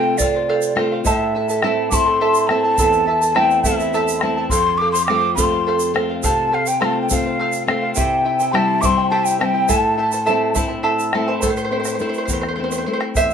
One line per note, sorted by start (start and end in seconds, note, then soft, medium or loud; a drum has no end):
0.00 1.01 C3 medium
0.00 0.17 A3 soft
0.00 0.18 C4 soft
0.00 0.17 F4 medium
0.00 0.19 A4 medium
0.00 0.20 C5 medium
0.00 0.20 F5 medium
0.00 0.19 G5 medium
0.05 bombo rim soft
0.18 0.74 A3 soft
0.18 0.75 C4 soft
0.18 0.75 F4 medium
0.18 0.34 A4 medium
0.18 0.35 C5 medium
0.18 0.78 D5 medium
0.18 0.33 F5 medium
0.18 bombo low medium
0.18 shaker medium
0.35 0.48 C5 soft
0.35 0.48 F5 medium
0.35 bombo rim soft
0.49 0.76 A4 medium
0.49 0.77 C5 medium
0.49 0.78 F5 medium
0.49 bombo rim soft
0.62 shaker medium
0.75 1.04 A3 medium
0.75 1.05 C4 soft
0.75 1.05 F4 medium
0.75 0.92 A4 medium
0.75 0.92 C5 medium
0.75 0.91 F5 medium
0.75 bombo rim medium
0.92 1.05 C5 soft
0.92 1.06 F5 medium
1.05 2.74 A2 medium
1.05 1.34 E4 medium
1.05 1.35 A4 medium
1.05 1.35 C5 medium
1.05 1.18 D#5 medium
1.05 1.33 E5 medium
1.05 1.35 A5 medium
1.05 bombo rim soft
1.05 bombo low medium
1.05 shaker medium
1.18 1.88 E5 medium
1.35 1.49 E4 medium
1.35 1.49 A4 medium
1.35 1.49 E5 medium
1.35 1.48 A5 medium
1.49 1.63 E4 soft
1.49 1.63 A4 soft
1.49 1.62 A5 medium
1.49 shaker medium
1.62 1.90 A3 soft
1.62 1.91 C4 soft
1.62 1.90 E4 medium
1.62 1.91 E4 soft
1.62 1.90 A4 medium
1.62 1.92 C5 medium
1.62 1.90 E5 medium
1.62 1.91 A5 loud
1.62 bombo rim medium
1.77 bombo rim soft
1.90 2.48 A3 soft
1.90 2.48 C4 soft
1.90 2.06 E4 medium
1.90 2.48 E4 medium
1.90 2.05 A4 medium
1.90 2.06 E5 medium
1.90 2.05 A5 medium
1.90 2.49 C6 medium
1.90 1.95 D6 medium
1.90 bombo low medium
1.90 shaker medium
2.06 2.20 E4 soft
2.06 2.20 A4 soft
2.06 2.20 A5 medium
2.06 bombo rim soft
2.21 2.49 E4 medium
2.21 2.49 A4 medium
2.21 2.50 C5 medium
2.21 2.48 E5 medium
2.21 2.49 A5 medium
2.21 bombo rim soft
2.35 shaker medium
2.47 3.05 A3 soft
2.47 3.06 C4 soft
2.47 2.63 E4 medium
2.47 3.06 E4 medium
2.47 2.63 A4 medium
2.47 2.64 E5 medium
2.47 3.33 A5 loud
2.47 2.63 A5 medium
2.47 bombo rim medium
2.64 2.78 E4 soft
2.64 2.78 A4 medium
2.64 2.78 A5 medium
2.78 4.48 E2 medium
2.78 3.06 E4 medium
2.78 3.07 A4 medium
2.78 3.07 C5 medium
2.78 3.05 E5 medium
2.78 3.07 A5 medium
2.78 bombo rim soft
2.78 bombo low medium
2.78 shaker loud
2.93 shaker soft
3.07 3.22 E4 medium
3.07 3.21 A4 medium
3.07 3.21 E5 medium
3.07 3.20 A5 medium
3.21 3.34 E4 soft
3.21 3.34 A4 soft
3.21 3.34 A5 medium
3.21 shaker medium
3.33 3.64 A3 soft
3.33 3.64 C4 soft
3.33 3.64 E4 medium
3.33 3.65 E4 soft
3.33 3.64 A4 medium
3.33 3.64 C5 medium
3.33 3.63 E5 medium
3.33 3.62 G5 medium
3.33 3.37 A5 medium
3.33 3.65 A5 medium
3.33 bombo rim medium
3.51 shaker soft
3.62 4.21 A3 soft
3.62 4.21 C4 soft
3.62 3.78 E4 medium
3.62 4.21 E4 medium
3.62 3.78 A4 medium
3.62 4.17 E5 medium
3.62 3.79 E5 medium
3.62 3.77 A5 medium
3.62 bombo low medium
3.62 shaker medium
3.78 3.93 E4 soft
3.78 3.94 A4 soft
3.78 3.93 A5 medium
3.78 shaker soft
3.94 4.22 E4 medium
3.94 4.22 A4 medium
3.94 4.22 C5 medium
3.94 4.21 E5 medium
3.94 4.23 A5 medium
3.94 shaker soft
4.08 shaker medium
4.19 4.50 A3 soft
4.19 4.50 C4 soft
4.19 4.37 E5 medium
4.19 4.47 A5 medium
4.19 4.24 C6 medium
4.19 bombo rim medium
4.23 4.37 E4 medium
4.23 4.51 E4 medium
4.23 4.37 A4 medium
4.23 4.36 A5 medium
4.37 4.51 E4 soft
4.37 4.49 A4 soft
4.37 4.51 A5 soft
4.49 6.20 F2 medium
4.49 4.80 A4 medium
4.49 4.80 C5 medium
4.49 4.80 F5 medium
4.49 4.79 C6 loud
4.49 bombo rim soft
4.49 bombo low medium
4.49 shaker medium
4.78 4.95 A4 medium
4.78 4.94 C5 medium
4.78 4.93 F5 medium
4.78 4.91 D6 medium
4.92 5.09 C5 soft
4.92 5.09 F5 medium
4.92 5.05 C6 medium
4.92 shaker medium
5.06 5.37 A4 medium
5.06 5.34 D6 loud
5.06 bombo rim medium
5.10 5.36 A3 soft
5.10 5.36 C4 soft
5.10 5.37 F4 medium
5.10 5.38 C5 medium
5.10 5.38 F5 medium
5.23 bombo rim soft
5.35 5.93 A3 soft
5.35 5.93 C4 soft
5.35 5.93 F4 medium
5.35 5.52 A4 medium
5.35 5.92 C6 medium
5.35 bombo low medium
5.35 shaker medium
5.39 5.52 C5 medium
5.39 5.51 F5 medium
5.52 5.66 C5 soft
5.52 5.67 F5 medium
5.52 bombo rim soft
5.67 5.94 A4 medium
5.67 5.95 C5 medium
5.67 5.95 F5 medium
5.67 bombo rim soft
5.80 shaker medium
5.94 6.50 A3 soft
5.94 6.50 C4 soft
5.94 6.51 F4 medium
5.94 6.09 A4 medium
5.94 6.10 C5 medium
5.94 6.08 F5 medium
5.94 bombo rim medium
6.10 6.23 C5 soft
6.10 6.23 F5 medium
6.23 7.93 C3 medium
6.23 6.51 A4 medium
6.23 6.51 C5 medium
6.23 6.52 F5 medium
6.23 6.56 A5 medium
6.23 bombo rim soft
6.23 bombo low medium
6.23 shaker medium
6.52 6.67 A4 medium
6.52 6.66 C5 medium
6.52 6.65 F5 medium
6.52 6.69 F5 medium
6.66 6.81 C5 soft
6.66 6.80 F5 medium
6.66 6.82 G5 medium
6.66 shaker medium
6.81 7.09 A3 soft
6.81 7.09 C4 soft
6.81 7.10 F4 medium
6.81 7.10 A4 medium
6.81 7.10 C5 medium
6.81 7.10 F5 medium
6.81 7.01 A5 medium
6.81 6.86 C6 medium
6.81 bombo rim medium
6.97 bombo rim soft
7.02 7.10 G5 medium
7.10 7.66 A3 medium
7.10 7.66 C4 soft
7.10 7.67 F4 medium
7.10 7.25 A4 medium
7.10 7.25 C5 medium
7.10 7.24 F5 medium
7.10 7.15 G5 medium
7.10 bombo low medium
7.10 shaker medium
7.14 7.65 F5 medium
7.26 7.39 C5 soft
7.26 7.40 F5 soft
7.26 bombo rim soft
7.39 7.68 A4 medium
7.39 7.68 C5 medium
7.39 7.69 F5 medium
7.39 bombo rim soft
7.53 shaker medium
7.66 7.96 A3 medium
7.66 7.96 C4 soft
7.66 7.96 F4 medium
7.66 7.83 A4 medium
7.66 7.83 C5 medium
7.66 7.94 F5 medium
7.66 7.81 F5 medium
7.66 bombo rim medium
7.82 7.96 C5 soft
7.82 7.95 F5 medium
7.94 9.66 C3 medium
7.94 8.24 E4 medium
7.94 8.25 G4 medium
7.94 8.24 C5 medium
7.94 8.24 E5 medium
7.94 8.53 G5 medium
7.94 8.25 G5 medium
7.94 bombo rim soft
7.94 bombo low medium
7.94 shaker medium
8.25 8.40 E4 medium
8.25 8.39 C5 medium
8.25 8.39 E5 medium
8.25 8.39 G5 medium
8.40 8.53 E4 soft
8.40 8.53 C5 soft
8.40 8.53 G5 medium
8.40 shaker medium
8.52 8.82 G3 soft
8.52 8.82 C4 soft
8.52 8.82 E4 medium
8.52 8.82 G4 medium
8.52 8.82 C5 medium
8.52 8.81 E5 medium
8.52 8.82 G5 medium
8.52 8.83 A5 medium
8.52 8.56 C6 medium
8.52 bombo rim medium
8.70 bombo rim soft
8.81 9.39 G3 soft
8.81 9.39 C4 soft
8.81 8.97 E4 medium
8.81 9.39 E4 medium
8.81 8.97 C5 medium
8.81 8.97 E5 medium
8.81 8.96 G5 medium
8.81 8.86 D6 medium
8.81 bombo low medium
8.81 shaker medium
8.85 9.10 C6 loud
8.97 9.11 E4 soft
8.97 9.11 C5 soft
8.97 9.11 G5 medium
8.97 bombo rim soft
9.10 9.39 E4 medium
9.10 9.40 G4 medium
9.10 9.40 C5 medium
9.10 9.38 E5 medium
9.10 9.40 G5 medium
9.10 9.26 A5 medium
9.10 bombo rim soft
9.24 9.40 G5 medium
9.24 shaker medium
9.39 9.69 G3 soft
9.39 9.69 C4 soft
9.39 9.54 E4 medium
9.39 9.69 E4 medium
9.39 9.54 C5 medium
9.39 9.54 E5 medium
9.39 9.53 G5 medium
9.39 9.46 A5 medium
9.39 bombo rim medium
9.45 9.71 G5 medium
9.54 9.68 E4 soft
9.54 9.68 C5 medium
9.54 9.68 G5 medium
9.69 11.39 A2 medium
9.69 9.97 E4 medium
9.69 9.98 A4 medium
9.69 9.97 C5 medium
9.69 9.96 E5 medium
9.69 10.56 A5 loud
9.69 9.98 A5 medium
9.69 bombo low medium
9.69 shaker medium
9.84 bombo rim soft
9.98 10.12 E4 medium
9.98 10.12 C5 medium
9.98 10.12 E5 medium
9.98 10.11 A5 medium
10.12 10.25 E4 soft
10.12 10.25 C5 soft
10.12 10.25 A5 soft
10.12 shaker medium
10.26 10.54 A3 soft
10.26 10.55 C4 soft
10.26 10.54 E4 medium
10.26 10.55 E4 medium
10.26 10.55 A4 medium
10.26 10.54 C5 medium
10.26 10.53 E5 medium
10.26 10.55 A5 medium
10.26 shaker soft
10.55 11.12 A3 soft
10.55 11.12 C4 soft
10.55 10.69 E4 medium
10.55 11.12 E4 medium
10.55 10.68 C5 medium
10.55 10.70 E5 medium
10.55 10.67 A5 medium
10.55 bombo low medium
10.55 shaker medium
10.68 10.82 E4 soft
10.68 10.82 C5 medium
10.68 10.83 A5 medium
10.83 11.12 E4 medium
10.83 11.13 A4 medium
10.83 11.13 C5 medium
10.83 11.12 E5 medium
10.83 11.13 A5 loud
10.99 bombo rim soft
10.99 shaker medium
11.13 11.42 A3 soft
11.13 11.42 C4 soft
11.13 11.28 E4 medium
11.13 11.42 E4 medium
11.13 11.27 C5 medium
11.13 11.28 E5 medium
11.13 11.26 A5 medium
11.13 bombo rim medium
11.28 11.43 E4 soft
11.28 11.41 C5 medium
11.28 11.42 A5 medium
11.42 11.99 A2 medium
11.42 11.49 A4 soft
11.42 11.49 C5 medium
11.42 bombo rim soft
11.42 bombo low medium
11.42 shaker medium
11.50 11.56 C5 soft
11.57 11.63 C5 medium
11.57 shaker soft
11.65 11.71 C5 soft
11.71 11.99 A3 soft
11.71 11.99 C4 soft
11.71 12.00 E4 soft
11.71 11.78 C5 soft
11.80 11.86 C5 soft
11.85 11.94 C5 soft
11.85 bombo rim soft
11.85 shaker medium
11.95 12.00 C5 soft
11.99 12.46 A3 soft
11.99 12.47 C4 soft
11.99 12.47 E4 soft
11.99 12.08 C5 medium
11.99 shaker soft
12.09 12.17 C5 soft
12.14 shaker soft
12.18 12.24 C5 soft
12.25 12.85 E2 medium
12.25 12.32 C5 soft
12.25 bombo low medium
12.25 shaker medium
12.33 12.40 C5 medium
12.41 12.47 C5 soft
12.41 bombo rim medium
12.49 12.54 C5 soft
12.56 12.86 A3 soft
12.56 12.86 C4 soft
12.56 12.86 E4 soft
12.56 12.63 C5 soft
12.64 12.71 C5 soft
12.72 12.77 C5 soft
12.72 bombo rim soft
12.72 shaker medium
12.78 12.85 C5 soft
12.86 13.33 A3 soft
12.86 13.34 C4 soft
12.86 13.34 E4 soft
12.86 12.92 C5 soft
12.93 12.99 C5 medium
13.00 13.08 C5 soft
13.00 bombo rim medium
13.15 13.34 E2 medium
13.15 13.34 C5 medium
13.15 13.34 E5 medium
13.15 bombo rim soft
13.15 bombo low medium
13.15 shaker medium
13.30 shaker soft